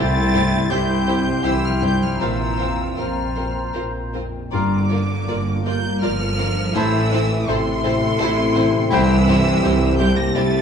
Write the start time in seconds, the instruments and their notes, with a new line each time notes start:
Already playing: harp C3 C4 E4, cello section A3, french horn section C4 E4, oboe C5, flute section G5
0.00 double bass section C2, felt piano C2, clarinet E4, violin section A6
0.33 felt piano G2, viola section C4 E4, harp E4, violin section G4 C5
0.70 double bass section C2, cello section G3, harp C4, viola section C4 E4, felt piano E4 G4, clarinet E4, violin section G4 C5 G6, oboe C5, flute section G5
1.07 viola section C4 E4, felt piano C4, violin section G4 C5, harp G4
1.43 double bass section C2, cello section E3, viola section C4 E4, clarinet E4, felt piano E4 G4, harp E4, violin section G4 C5 E6, oboe C5, flute section G5
1.63 cello section F3, violin section F6
1.81 felt piano G2, cello section G3, harp C4, viola section C4 E4, violin section G4 C5 G6
2.01 cello section F3, violin section F6
2.18 double bass section A#1, felt piano A#1, harp A#2, cello section E3, french horn section C4 F4, viola section C4 F5, clarinet F4, violin section A#4 C5 E6, oboe C5, flute section A#5
2.57 felt piano F2, viola section C4 F5, violin section A#4 C5, harp F5
2.96 double bass section A#1, cello section F3, harp C4, viola section C4 F4, clarinet F4, felt piano F4 A#4, violin section A#4 C5 F6, oboe C5, flute section A#5
3.35 felt piano C4, viola section C4 F4, violin section A#4 C5, harp A#4
3.73 double bass section A#1, viola section C4 F4, felt piano F4 A#4, harp F4, violin section A#4 C5
4.13 felt piano F2, viola section C4 F4, harp C4, violin section A#4 C5
4.51 double bass section G1, harp G2, felt piano G2, cello section D3, french horn section A#3 F4, viola section A#3 F4, clarinet F4, violin section A#4 D5 D6, oboe A#4, flute section A#5
4.90 felt piano D3, viola section A#3 F4, harp F4, violin section A#4 D5
5.28 double bass section G1, harp A#3, viola section A#3 F4, felt piano F4 A#4, violin section A#4 D5
5.65 cello section G3, felt piano A#3, viola section A#3 F4, harp A#4, violin section A#4 D5 G6
6.02 double bass section G1, cello section F3, viola section A#3 F4, harp F4, felt piano F4 A#4, violin section A#4 D5 F6
6.38 felt piano D3, harp A#3, viola section A#3 F4, violin section A#4 D5
6.74 double bass section A1, harp A2, felt piano A2, cello section E3, viola section C4 E4, french horn section C4 E4, clarinet E4, violin section A4 C5 E6, oboe C5, flute section A5
7.11 felt piano E3, viola section C4 E4, harp E4, violin section A4 C5
7.48 double bass section A1, cello section C3, viola section C4 E4, harp C4, felt piano E4 A4, violin section A4 C5 C6
7.84 viola section C4 E4, felt piano C4, violin section A4 C5, harp A4
8.20 double bass section A1, viola section C4 E4, felt piano E4 A4, harp E4, violin section A4 C5
8.55 felt piano E3, viola section C4 E4, harp C4, violin section A4 C5
8.90 double bass section C2, felt piano C2, harp C3, cello section E3, viola section C4 E4, clarinet E4, french horn section G4, violin section G4 C5 E6, oboe C5, flute section G5
9.27 felt piano G2, viola section C4 E4, harp E4, violin section G4 C5
9.63 double bass section C2, harp C4, viola section C4 E4, felt piano E4 G4, violin section G4 C5
9.98 cello section G3, felt piano C4, viola section C4 E4, harp G4, violin section G4 C5 G6
10.17 cello section A#3, violin section A#6
10.34 double bass section C2, cello section A3, viola section C4 E4, harp E4, felt piano E4 G4, violin section G4 C5 A6